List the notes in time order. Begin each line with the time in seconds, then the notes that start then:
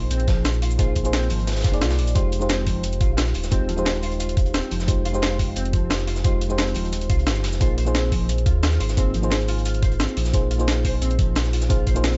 Already playing: A#3 D#4 F4 G#4 C5
0.10 A#1 C4, closed hi-hat, cabasa
0.20 closed hi-hat, cabasa
0.28 F3, kick, snare, closed hi-hat
0.45 snare, closed hi-hat, cabasa
0.54 cabasa
0.62 F4, closed hi-hat, open hi-hat
0.71 cabasa
0.78 A#1 A#3 D#4 F4 G#4 C5, kick, closed hi-hat, cabasa
0.95 kick, closed hi-hat
1.04 A#3 D#4 F4 G#4 C5, closed hi-hat, cabasa
1.13 C4, snare, closed hi-hat, cabasa
1.22 closed hi-hat
1.30 G#1 F3, closed hi-hat, open hi-hat, cabasa
1.39 closed hi-hat
1.47 snare, closed hi-hat, cabasa
1.51 snare, closed hi-hat
1.56 snare, closed hi-hat, cabasa
1.60 snare, closed hi-hat
1.64 F1 F4, kick, snare, closed hi-hat
1.72 A#3 D#4 F4 G#4 D5, closed hi-hat
1.81 C2 F4, snare, closed hi-hat, cabasa
1.90 snare, closed hi-hat, cabasa
1.98 A#1, closed hi-hat, open hi-hat, cabasa
2.07 closed hi-hat, cabasa
2.15 F1 G#3 D#4 F4 G4 C5, kick, closed hi-hat, cabasa
2.32 closed hi-hat
2.40 G#3 D#4 F4 G4 C5, cabasa
2.49 C4, snare, closed hi-hat, cabasa
2.67 F3, kick, closed hi-hat, open hi-hat, cabasa
2.83 closed hi-hat, cabasa
2.93 closed hi-hat, cabasa
3.01 A#1 F4, kick, closed hi-hat
3.17 F4, snare, closed hi-hat, cabasa
3.27 snare, cabasa
3.34 D#1, closed hi-hat, open hi-hat
3.44 snare, cabasa
3.51 G#3 C4 D#4 F4 G4 C5, kick, closed hi-hat, cabasa
3.69 F3, closed hi-hat
3.76 G#3 D#4 F4 G4 C5, cabasa
3.85 snare, closed hi-hat, cabasa
3.95 closed hi-hat
4.02 F4, closed hi-hat, open hi-hat, cabasa
4.12 closed hi-hat
4.20 F4, closed hi-hat, cabasa
4.29 closed hi-hat, cabasa
4.37 kick, closed hi-hat
4.46 closed hi-hat
4.54 C4, snare, closed hi-hat, cabasa
4.63 cabasa
4.71 F1 F3, closed hi-hat, open hi-hat
4.80 snare, cabasa
4.87 F1 G#3 D#4 F4 G4 C5, kick, closed hi-hat, cabasa
5.05 F4, closed hi-hat
5.13 G#3 D#4 F4 G4 C5, cabasa
5.22 F4, snare, closed hi-hat, cabasa
5.39 kick, closed hi-hat, open hi-hat, cabasa
5.56 F1 C4, closed hi-hat, cabasa
5.65 closed hi-hat, cabasa
5.73 F3, kick, closed hi-hat
5.90 snare, closed hi-hat, cabasa
5.99 snare, cabasa
6.07 F4, closed hi-hat, open hi-hat
6.16 snare, cabasa
6.24 F1 G#3 D#4 F4 G4 C5, kick, closed hi-hat, cabasa
6.41 closed hi-hat
6.49 G#3 D#4 F4 G4 C5, cabasa
6.58 C4, snare, closed hi-hat, cabasa
6.67 closed hi-hat
6.74 D#1 F3, closed hi-hat, open hi-hat, cabasa
6.85 closed hi-hat
6.93 closed hi-hat, cabasa
7.01 closed hi-hat, cabasa
7.10 C2 F4, kick, closed hi-hat
7.19 closed hi-hat
7.27 G1 F4, snare, closed hi-hat, cabasa
7.36 snare, cabasa
7.43 F1, snare, closed hi-hat, open hi-hat
7.53 snare, cabasa
7.60 A#1 A#3 D#4 F4 G#4 C5, kick, closed hi-hat, cabasa
7.78 C5, closed hi-hat
7.85 A#3 D#4 F4 G#4 C5, cabasa
7.95 C4, snare, closed hi-hat, cabasa
8.12 F3, kick, closed hi-hat, open hi-hat, cabasa
8.29 closed hi-hat, cabasa
8.38 closed hi-hat, cabasa
8.46 D#2 F4, kick, closed hi-hat
8.63 F4, snare, closed hi-hat, cabasa
8.72 snare, cabasa
8.80 G#1 C5, closed hi-hat, open hi-hat
8.89 snare, cabasa
8.97 A#3 C4 D#4 F4 G#4 C5, kick, closed hi-hat, cabasa
9.14 F3, closed hi-hat
9.22 A#3 D#4 F4 G#4 C5, cabasa
9.30 snare, closed hi-hat, cabasa
9.40 closed hi-hat
9.48 F4, closed hi-hat, open hi-hat, cabasa
9.58 closed hi-hat
9.65 F4, closed hi-hat, cabasa
9.74 closed hi-hat, cabasa
9.83 C5, kick, closed hi-hat
9.91 closed hi-hat
10.00 C4, snare, closed hi-hat, cabasa
10.09 cabasa
10.17 A#1 F3, closed hi-hat, open hi-hat
10.25 snare, cabasa
10.33 A#1 A#3 D#4 F4 G#4 C5, kick, closed hi-hat, cabasa
10.51 F4, closed hi-hat
10.58 A#3 D#4 F4 G#4 C5, cabasa
10.68 F4, snare, closed hi-hat, cabasa
10.85 C5, kick, closed hi-hat, open hi-hat, cabasa
11.02 A#1 C4, closed hi-hat, cabasa
11.11 closed hi-hat, cabasa
11.19 F3, kick, closed hi-hat
11.35 snare, closed hi-hat, cabasa
11.45 snare, cabasa
11.53 F4, closed hi-hat, open hi-hat
11.61 snare, cabasa
11.69 A#1 A#3 D#4 F4 G#4 C5, kick, closed hi-hat, cabasa
11.87 C5, kick, closed hi-hat
11.94 A#3 D#4 F4 G#4 C5, closed hi-hat, cabasa
12.04 C4, snare, closed hi-hat, cabasa
12.13 closed hi-hat